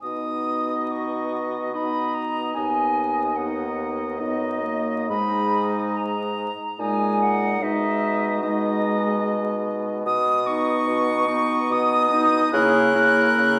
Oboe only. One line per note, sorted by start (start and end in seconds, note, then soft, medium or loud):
0.03 1.70 D#5 medium
1.74 2.55 D#5 medium
2.56 3.37 D#5 medium
3.39 4.18 D#5 medium
4.20 5.08 D#5 medium
5.11 6.50 D#5 medium
6.79 7.59 D#5 medium
7.62 8.43 D#5 medium
8.43 10.02 D#5 medium
10.46 11.27 D#5 medium
11.28 12.10 D#5 medium
12.11 12.52 D#5 medium
12.54 12.95 A#4 medium
12.96 13.59 A#4 medium